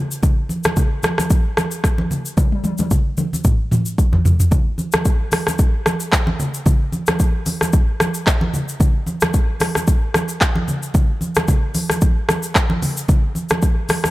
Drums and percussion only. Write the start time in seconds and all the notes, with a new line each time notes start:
0.11 shaker
0.23 kick, low conga, shaker
0.49 high conga, shaker
0.64 cross-stick, high conga, shaker
0.76 kick, low conga, shaker
1.03 cross-stick, high conga, shaker
1.18 cross-stick, high conga, shaker
1.30 kick, shaker
1.57 cross-stick, high conga, shaker
1.71 shaker
1.84 kick, cross-stick, shaker
1.98 high conga
2.11 low conga, shaker
2.26 shaker
2.37 kick, high tom, low conga, shaker
2.52 high tom
2.64 high tom, high conga, shaker
2.78 high tom, high conga, shaker
2.91 kick, low conga, shaker
3.17 mid tom, high conga, shaker
3.33 high conga, shaker
3.44 kick, mid tom, shaker
3.71 mid tom, high conga, shaker
3.86 shaker
3.98 kick, shaker
4.13 floor tom, high conga
4.25 floor tom, low conga, shaker
4.40 floor tom, shaker
4.51 kick, low conga, shaker
4.78 high conga, shaker
4.92 cross-stick, high conga, shaker
5.05 kick, shaker
5.32 cross-stick, open hi-hat, high conga, shaker
5.47 cross-stick, high conga, shaker
5.59 kick, shaker
5.86 cross-stick, high conga, shaker
6.00 shaker
6.12 kick, cross-stick, clap, shaker
6.27 high conga
6.40 low conga, shaker
6.54 shaker
6.66 kick, low conga, shaker
6.92 high conga, shaker
7.07 cross-stick, high conga, shaker
7.19 kick, shaker
7.46 open hi-hat, high conga, shaker
7.61 cross-stick, high conga, shaker
7.73 kick, shaker
8.00 cross-stick, high conga, shaker
8.14 shaker
8.27 kick, cross-stick, clap, shaker
8.41 high conga
8.54 low conga, shaker
8.68 shaker
8.80 kick, low conga, shaker
9.06 high conga, shaker
9.21 cross-stick, high conga, shaker
9.34 kick, shaker
9.60 cross-stick, open hi-hat, high conga, shaker
9.75 cross-stick, high conga, shaker
9.87 kick, shaker
10.14 cross-stick, high conga, shaker
10.29 shaker
10.41 kick, cross-stick, clap, shaker
10.55 high conga
10.68 low conga, shaker
10.83 shaker
10.94 kick, low conga, shaker
11.21 high conga, shaker
11.35 cross-stick, high conga, shaker
11.48 kick, low conga, shaker
11.75 open hi-hat, high conga, shaker
11.90 cross-stick, high conga, shaker
12.01 kick, shaker
12.29 cross-stick, high conga, shaker
12.43 shaker
12.55 kick, cross-stick, clap, shaker
12.70 high conga
12.82 open hi-hat, low conga, shaker
12.97 shaker
13.08 kick, low conga, shaker
13.35 high conga, shaker
13.49 cross-stick, high conga, shaker
13.62 kick, shaker
13.89 cross-stick, open hi-hat, high conga, shaker
14.04 cross-stick, high conga, shaker